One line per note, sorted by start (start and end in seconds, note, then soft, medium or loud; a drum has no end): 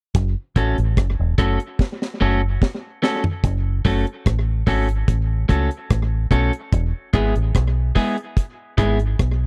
0.15 0.34 F#1 loud
0.15 kick loud
0.15 closed hi-hat medium
0.56 0.75 A1 medium
0.56 0.76 A3 medium
0.56 0.76 C#4 medium
0.56 0.76 F#4 medium
0.56 0.76 A4 medium
0.56 kick loud
0.56 closed hi-hat medium
0.78 0.95 A1 medium
0.78 closed hi-hat soft
0.97 1.16 F#1 medium
0.97 kick loud
0.97 cross-stick loud
0.97 closed hi-hat medium
1.19 1.36 E1 medium
1.38 1.57 F#1 medium
1.38 1.58 A3 medium
1.38 1.58 C#4 medium
1.38 1.58 F#4 medium
1.38 1.58 A4 medium
1.38 kick medium
1.38 closed hi-hat medium
1.60 closed hi-hat soft
1.79 kick loud
1.79 snare medium
2.02 snare soft
2.21 2.57 F#1 medium
2.21 2.40 A3 medium
2.21 2.40 C#4 medium
2.21 2.41 F#4 medium
2.21 2.41 A4 loud
2.62 kick loud
2.62 snare medium
3.03 3.22 A3 medium
3.03 3.23 C#4 medium
3.03 3.23 F#4 medium
3.03 3.23 A4 medium
3.03 snare medium
3.24 floor tom medium
3.44 3.79 F#1 loud
3.44 kick loud
3.44 closed hi-hat medium
3.85 4.04 F#1 loud
3.85 4.05 A3 medium
3.85 4.05 C#4 medium
3.85 4.05 F#4 medium
3.85 4.05 A4 medium
3.85 kick medium
3.85 open hi-hat medium
4.07 closed hi-hat medium
4.26 4.62 A1 medium
4.26 kick medium
4.26 cross-stick loud
4.26 closed hi-hat medium
4.67 5.03 G#1 medium
4.67 4.87 A3 medium
4.67 4.87 C#4 medium
4.67 4.87 F#4 medium
4.67 4.87 A4 medium
4.67 kick medium
4.67 open hi-hat medium
4.89 closed hi-hat medium
5.08 5.44 A1 medium
5.08 kick loud
5.08 closed hi-hat medium
5.49 5.68 C#2 medium
5.49 5.69 A3 medium
5.49 5.69 C#4 medium
5.49 5.69 F#4 medium
5.49 5.69 A4 medium
5.49 kick loud
5.49 closed hi-hat medium
5.71 closed hi-hat soft
5.90 6.26 A1 loud
5.90 kick loud
5.90 cross-stick loud
5.90 closed hi-hat medium
6.31 6.50 B1 medium
6.31 6.51 A3 medium
6.31 6.51 C#4 medium
6.31 6.51 F#4 medium
6.31 6.51 A4 medium
6.31 kick medium
6.31 closed hi-hat medium
6.53 closed hi-hat medium
6.72 6.91 E1 loud
6.72 kick loud
6.72 closed hi-hat loud
7.13 7.32 G#1 medium
7.13 7.33 G#3 medium
7.13 7.33 B3 medium
7.13 7.34 E4 medium
7.13 7.34 G#4 medium
7.13 kick loud
7.13 cross-stick medium
7.13 closed hi-hat medium
7.36 7.52 A1 medium
7.36 closed hi-hat soft
7.55 7.91 B1 medium
7.55 kick medium
7.55 cross-stick loud
7.55 closed hi-hat medium
7.95 8.15 G#3 medium
7.95 8.15 B3 medium
7.95 8.16 E4 medium
7.95 8.16 G#4 loud
7.95 kick medium
7.95 open hi-hat medium
8.18 closed hi-hat medium
8.37 kick loud
8.37 closed hi-hat medium
8.78 9.14 G#1 medium
8.78 8.97 G#3 medium
8.78 8.98 B3 medium
8.78 8.98 E4 medium
8.78 8.98 G#4 medium
8.78 kick loud
8.78 closed hi-hat medium
8.99 closed hi-hat soft
9.19 9.47 B1 medium
9.19 kick loud
9.19 cross-stick loud
9.19 closed hi-hat medium